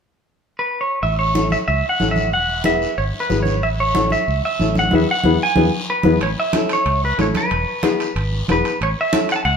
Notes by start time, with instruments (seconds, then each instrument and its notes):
0.59 clean electric guitar B4
0.81 clean electric guitar C#5
1.03 fingered electric bass A1, clean electric guitar E5, high conga, long guiro
1.19 clean electric guitar C#5
1.34 upright piano C#4 E4 A4, high conga, short guiro
1.50 clean electric guitar E5, high conga, short guiro
1.68 fingered electric bass C#2, clean electric guitar E5, long guiro
1.84 high conga
1.89 clean electric guitar F#5
2.00 fingered electric bass A1, upright piano C#4 E4 A4, high conga, short guiro
2.11 clean electric guitar E5
2.16 high conga, short guiro
2.32 fingered electric bass E1, clean electric guitar F#5, high conga, long guiro
2.64 upright piano B3 E4 G#4, clean electric guitar E5, high conga, short guiro
2.82 short guiro
2.98 fingered electric bass G#1, clean electric guitar C#5, long guiro
3.14 high conga
3.20 clean electric guitar B4
3.29 fingered electric bass G#1, upright piano B3 E4 G#4, high conga, short guiro
3.43 clean electric guitar C#5, high conga, short guiro
3.63 fingered electric bass A1, clean electric guitar E5, high conga, long guiro
3.80 clean electric guitar C#5
3.95 upright piano C#4 E4 A4, high conga, short guiro
4.10 clean electric guitar E5, high conga, short guiro
4.28 fingered electric bass C#2, long guiro
4.43 clean electric guitar E5, high conga
4.59 fingered electric bass A1, upright piano C#4 E4 A4, high conga, short guiro
4.75 clean electric guitar F#5, high conga, short guiro
4.91 fingered electric bass E2, upright piano B3 E4 G#4, clean electric guitar E5, high conga, long guiro
5.11 clean electric guitar F#5
5.24 fingered electric bass E2, upright piano B3 E4 G#4, high conga, long guiro
5.43 clean electric guitar G#5
5.56 fingered electric bass E2, upright piano B3 E4 G#4, high conga, long guiro
5.90 clean electric guitar B4
6.03 fingered electric bass E2, upright piano B3 E4 G#4, high conga, long guiro
6.21 fingered electric bass A1, clean electric guitar C#5, high conga, high timbale, long guiro
6.40 clean electric guitar E5
6.53 upright piano C#4 E4 A4, high conga, high timbale, short guiro
6.69 clean electric guitar C#5, high timbale, short guiro
6.86 fingered electric bass C#2, high timbale, long guiro
7.03 clean electric guitar B4, high conga
7.18 fingered electric bass A1, upright piano C#4 E4 A4, clean electric guitar C#5, high conga, high timbale, low timbale, short guiro
7.35 clean electric guitar B4, high conga, high timbale, short guiro
7.51 fingered electric bass E1, high conga, high timbale, long guiro
7.83 upright piano B3 E4 G#4, high conga, high timbale, short guiro
8.00 high timbale, short guiro
8.16 fingered electric bass G#1, high timbale, long guiro
8.32 high conga
8.48 fingered electric bass E1, upright piano B3 E4 G#4, clean electric guitar B4, high conga, high timbale, short guiro
8.65 high timbale, short guiro
8.81 fingered electric bass A1, clean electric guitar C#5, high conga, high timbale, long guiro
9.01 clean electric guitar E5
9.12 upright piano C#4 E4 A4, high conga, high timbale, short guiro
9.29 clean electric guitar F#5, high timbale, short guiro
9.36 clean electric guitar A5
9.45 fingered electric bass C#2, clean electric guitar F#5, high timbale, long guiro